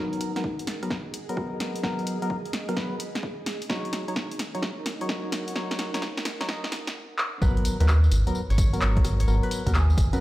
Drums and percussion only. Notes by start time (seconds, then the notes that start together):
0.13 closed hi-hat
0.21 cross-stick, open hi-hat
0.36 snare, closed hi-hat
0.44 kick
0.59 closed hi-hat
0.67 snare, open hi-hat
0.83 cross-stick, closed hi-hat
0.90 kick, snare
1.14 open hi-hat
1.29 closed hi-hat
1.37 kick, cross-stick
1.60 snare, open hi-hat
1.76 closed hi-hat
1.83 kick, snare
1.99 closed hi-hat
2.07 open hi-hat
2.22 closed hi-hat
2.30 kick
2.46 closed hi-hat
2.53 snare, open hi-hat
2.69 cross-stick, closed hi-hat
2.77 kick, snare
3.00 open hi-hat
3.15 snare, closed hi-hat
3.23 kick
3.46 snare, open hi-hat
3.62 open hi-hat
3.70 kick, snare
3.85 closed hi-hat
3.93 snare, open hi-hat
4.08 closed hi-hat
4.16 kick, snare
4.31 closed hi-hat
4.39 snare, open hi-hat
4.55 closed hi-hat
4.62 kick, snare
4.86 snare, open hi-hat
5.01 closed hi-hat
5.09 kick, snare
5.32 snare, open hi-hat
5.48 closed hi-hat
5.56 kick, snare
5.71 snare, closed hi-hat
5.79 snare, open hi-hat
5.94 snare, closed hi-hat
6.02 kick, snare
6.17 snare, closed hi-hat
6.25 snare, open hi-hat
6.41 snare, closed hi-hat
6.49 kick, snare
6.64 snare
6.72 snare, open hi-hat
6.87 snare, closed hi-hat
7.18 clap
7.42 kick, tambourine
7.57 closed hi-hat
7.65 open hi-hat, tambourine
7.80 cross-stick, closed hi-hat, tambourine
7.88 clap, tambourine
8.04 tambourine
8.12 open hi-hat, tambourine
8.27 closed hi-hat, tambourine
8.35 tambourine
8.50 closed hi-hat, tambourine
8.58 kick, open hi-hat, tambourine
8.74 closed hi-hat, tambourine
8.81 clap, tambourine
8.97 kick, closed hi-hat
9.05 cross-stick, open hi-hat, tambourine
9.20 closed hi-hat, tambourine
9.28 tambourine
9.43 closed hi-hat
9.51 open hi-hat, tambourine
9.66 kick, cross-stick, closed hi-hat, tambourine
9.74 clap, tambourine
9.90 tambourine
9.98 kick, open hi-hat, tambourine
10.13 closed hi-hat, tambourine, high conga